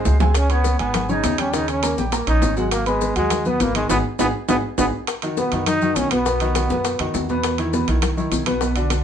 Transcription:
Already playing: trombone G#3, grand piano C4 C5 C6
0.05 upright bass C#2, high bongo, low bongo, low timbale, maracas
0.20 grand piano G#3 G#4 G#5, trombone C4, high bongo, low conga, low timbale, maracas
0.34 trombone C#4, high bongo, high conga, high timbale, maracas
0.50 trombone B3, grand piano C#4 C#5 C#6, high bongo, high conga, high timbale, maracas
0.64 high bongo, high conga, maracas
0.79 upright bass G#1, grand piano G#3 G#4 G#5, trombone B3, high bongo, high conga, high timbale, maracas
0.94 high bongo, high conga, low conga, high timbale, maracas
1.09 grand piano C#3 C#4 C#5, trombone D#4, high conga, low conga, maracas
1.24 upright bass D#2, high bongo, low bongo, high conga, high timbale, low timbale, maracas
1.38 grand piano G3 G4 G5, trombone C#4, high bongo, high conga, high timbale, maracas
1.53 grand piano C#3 C#4 C#5, trombone D#4, high bongo, high conga, maracas
1.68 trombone C#4, high bongo, high conga, high timbale, maracas
1.83 grand piano A#3 A#4 A#5, high bongo, high conga, high timbale, maracas
1.98 upright bass A#1, grand piano G3 G4 G5, high bongo, high conga, maracas
2.12 grand piano A#3 A#4 A#5, high bongo, high conga, high timbale, maracas
2.27 upright bass A#1, grand piano C#4 C#5 C#6, trombone D#4, high conga, high timbale, maracas
2.42 upright bass G#1, high bongo, low bongo, high conga, low timbale, maracas
2.56 grand piano F#3 F#4 F#5, trombone G#3, high bongo, high conga, maracas
2.71 trombone A#3, high bongo, high conga, high timbale, maracas
2.86 trombone G#3, grand piano B3 B4 B5, high bongo, high conga, high timbale, maracas
3.01 high bongo, high conga, maracas
3.16 upright bass D#2, grand piano F#3 F#4 F#5, trombone G#3, high bongo, high conga, high timbale, maracas
3.30 high bongo, high conga, low conga, high timbale, maracas
3.45 grand piano B2 B3 B4, trombone B3, high conga, low conga, maracas
3.60 upright bass G#1, trombone A#3, high bongo, low bongo, high conga, high timbale, maracas
3.75 grand piano D#3 D#4 D#5, trombone G#3, high bongo, high conga, high timbale, maracas
3.89 upright bass G#1, trombone B3, grand piano D#4 F#4 G#4, low bongo, high conga, high timbale, maracas
4.19 upright bass G#1, trombone B3, grand piano D#4 F#4 G#4, low bongo, high conga, high timbale, maracas
4.49 upright bass G#1, trombone B3, grand piano D#4 F#4 G#4, low bongo, high conga, high timbale, maracas
4.78 upright bass G#1, trombone B3, grand piano D#4 F#4 G#4, low bongo, high conga, high timbale, maracas
5.07 high bongo, high conga, high timbale, maracas
5.22 grand piano D#3 D#4 F#4, high bongo, high conga, high timbale, maracas
5.37 grand piano B2 B3 B4, trombone B3, high bongo, high conga, maracas
5.52 upright bass F#2, grand piano D#3 D#4 F#4, high bongo, high conga, high timbale, maracas
5.66 trombone D#4, high bongo, high conga, low conga, high timbale, maracas
5.82 grand piano D#3 D#4 F#4, high conga, low conga, maracas
5.96 upright bass B1, trombone C#4, high bongo, low bongo, high conga, high timbale, maracas
6.11 grand piano B2 B3 B4, trombone B3, high bongo, high conga, high timbale, maracas
6.26 grand piano B2 B3 B4, high bongo, high conga, maracas
6.40 grand piano D#3 D#4 F#4, high bongo, high conga, high timbale, maracas
6.55 grand piano D#3 D#4 F#4, high bongo, high conga, high timbale, maracas
6.70 upright bass F#2, grand piano B2 B3 B4, high bongo, high conga, maracas
6.85 high bongo, high conga, high timbale, maracas
6.99 upright bass F#2, grand piano D#3 D#4 F#4, high conga, high timbale, maracas
7.14 upright bass E2, high bongo, low bongo, high conga, low timbale, maracas
7.29 grand piano B2 B3 B4, high bongo, high conga, maracas
7.44 high bongo, high timbale, maracas
7.58 grand piano D#3 D#4 E4, high bongo, high conga, high timbale, maracas
7.73 grand piano B2 B3 B4, high bongo, high conga, maracas
7.88 upright bass B1, grand piano D#3 D#4 E4, high bongo, high conga, high timbale, maracas
8.02 high bongo, high conga, low conga, high timbale, maracas
8.17 grand piano D#3 D#4 E4, high conga, low conga, maracas
8.32 upright bass B1, high bongo, low bongo, high conga, high timbale, maracas
8.46 grand piano B2 B3 B4, high bongo, high conga, high timbale, maracas
8.61 grand piano B2 B3 B4, high bongo, high conga, maracas
8.76 grand piano D3 D4 F#4, high bongo, high conga, high timbale, maracas
8.90 grand piano D3 D4 F#4, high bongo, high conga, high timbale, maracas

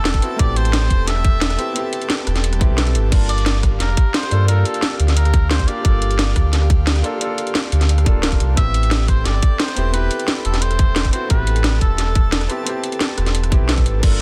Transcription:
Already playing: sub bass E1, felt piano B3 C4 E4 G4, muted trumpet A4, analog synth pad A4 G5 A5
0.05 snare, closed hi-hat
0.14 kick, closed hi-hat
0.21 felt piano B3 C4 E4 F#4, closed hi-hat
0.36 sub bass A1, felt piano A3 C4, muted trumpet D5, kick, closed hi-hat
0.40 felt piano E4 G4
0.56 muted trumpet C5, closed hi-hat
0.65 closed hi-hat
0.73 snare, closed hi-hat
0.90 sub bass E1, kick, closed hi-hat
1.07 muted trumpet E5, snare, closed hi-hat
1.16 cross-stick
1.25 kick, closed hi-hat
1.41 snare, closed hi-hat
1.50 cross-stick, closed hi-hat
1.57 felt piano B3 C4 E4 G4, closed hi-hat
1.73 felt piano B3 C4, closed hi-hat
1.77 felt piano E4 G4
1.93 closed hi-hat
2.02 closed hi-hat
2.10 snare, closed hi-hat
2.27 sub bass E1, cross-stick, closed hi-hat
2.36 snare, closed hi-hat
2.44 closed hi-hat, swell
2.53 cross-stick, closed hi-hat
2.59 felt piano B3 C4 E4 G4, kick, closed hi-hat
2.70 sub bass B1
2.76 felt piano B3 C4 E4 A4, snare, closed hi-hat
2.87 closed hi-hat
2.95 sub bass G1, closed hi-hat
3.04 sub bass A1
3.09 sub bass G1, felt piano A#3 D4, analog synth pad G4 F5, kick, closed hi-hat, crash
3.13 felt piano F4 A5
3.29 muted trumpet D5, closed hi-hat
3.38 closed hi-hat
3.46 snare, closed hi-hat
3.63 kick, cross-stick, closed hi-hat
3.80 sub bass F1, muted trumpet A#4, snare, closed hi-hat
3.89 cross-stick
3.97 kick, closed hi-hat
4.14 muted trumpet C5, snare, closed hi-hat
4.23 cross-stick, closed hi-hat
4.30 sub bass G2, felt piano A#3 D4 F4 A4, closed hi-hat
4.45 felt piano A#3 D4, muted trumpet A#4, closed hi-hat
4.49 felt piano F4 A4
4.65 muted trumpet A4, closed hi-hat
4.74 closed hi-hat
4.82 snare, closed hi-hat
4.99 sub bass D2, closed hi-hat
5.08 snare, closed hi-hat
5.17 muted trumpet A#4, closed hi-hat
5.25 cross-stick, closed hi-hat
5.34 kick, closed hi-hat
5.51 muted trumpet C5, snare, closed hi-hat
5.59 kick, closed hi-hat
5.66 felt piano A#3 D4 F4 G4, muted trumpet D5, closed hi-hat
5.81 sub bass G1, felt piano A#3 D4, kick, closed hi-hat
5.86 felt piano F4 A4
6.02 closed hi-hat
6.11 closed hi-hat
6.19 snare, closed hi-hat
6.36 sub bass D2, kick, cross-stick, closed hi-hat
6.53 snare, closed hi-hat
6.62 cross-stick
6.70 kick, closed hi-hat
6.87 snare, closed hi-hat
6.96 cross-stick, closed hi-hat
7.02 felt piano A#3 D4 F4 A4, closed hi-hat
7.18 felt piano A#3 D4, closed hi-hat
7.22 felt piano F4 A4
7.38 closed hi-hat
7.47 closed hi-hat
7.55 snare, closed hi-hat
7.72 sub bass D2, closed hi-hat
7.81 snare, closed hi-hat
7.89 closed hi-hat
7.98 cross-stick, closed hi-hat
8.04 sub bass D1, felt piano A#3 D4 F4 A4, kick, closed hi-hat
8.21 felt piano A#3 D4 F4 A#4, snare, closed hi-hat
8.32 kick, closed hi-hat
8.40 sub bass C2, closed hi-hat
8.54 sub bass A1, felt piano B3 C4, analog synth pad A4 G5, muted trumpet E5, kick, closed hi-hat
8.58 felt piano E4 G4
8.74 closed hi-hat
8.83 closed hi-hat
8.91 snare, closed hi-hat
9.08 muted trumpet C5, kick, cross-stick, closed hi-hat
9.25 sub bass G1, muted trumpet D5, snare, closed hi-hat
9.34 cross-stick
9.43 kick, closed hi-hat
9.59 muted trumpet C5, snare, closed hi-hat
9.68 cross-stick, closed hi-hat
9.75 sub bass E1, felt piano B3 C4 E4 G4, closed hi-hat
9.90 felt piano B3 C4, muted trumpet B4, closed hi-hat
9.95 felt piano E4 G4
10.11 closed hi-hat
10.20 closed hi-hat
10.28 snare, closed hi-hat
10.45 sub bass E1, muted trumpet A4, closed hi-hat
10.54 snare, closed hi-hat
10.62 muted trumpet C5, closed hi-hat
10.71 cross-stick, closed hi-hat
10.79 kick, closed hi-hat
10.96 snare, closed hi-hat
11.05 kick, closed hi-hat
11.11 felt piano B3 C4 E4 F#4, muted trumpet C5, closed hi-hat
11.27 sub bass A1, felt piano B3 C4, muted trumpet B4, analog synth pad A5, kick, closed hi-hat
11.31 felt piano E4 G4
11.47 closed hi-hat
11.56 closed hi-hat
11.64 snare, closed hi-hat
11.81 sub bass E1, muted trumpet A4, kick, closed hi-hat
11.98 snare, closed hi-hat
12.07 cross-stick
12.15 kick, closed hi-hat
12.32 snare, closed hi-hat
12.41 cross-stick, closed hi-hat
12.48 felt piano B3 C4 E4 G4, closed hi-hat
12.63 felt piano B3 C4, closed hi-hat
12.68 felt piano E4 G4
12.84 closed hi-hat
12.92 closed hi-hat
13.01 snare, closed hi-hat
13.18 sub bass E1, cross-stick, closed hi-hat
13.26 snare, closed hi-hat
13.35 closed hi-hat
13.44 cross-stick, closed hi-hat
13.50 felt piano B3 C4 E4 G4, kick, closed hi-hat
13.61 sub bass B1
13.67 felt piano B3 C4 E4 A4, snare, closed hi-hat
13.78 kick, closed hi-hat
13.86 sub bass G1, closed hi-hat
13.95 sub bass A1
14.00 sub bass G1, felt piano A#3 D4, analog synth pad G4 F5, kick, closed hi-hat, crash
14.04 felt piano F4 A4
14.12 cross-stick

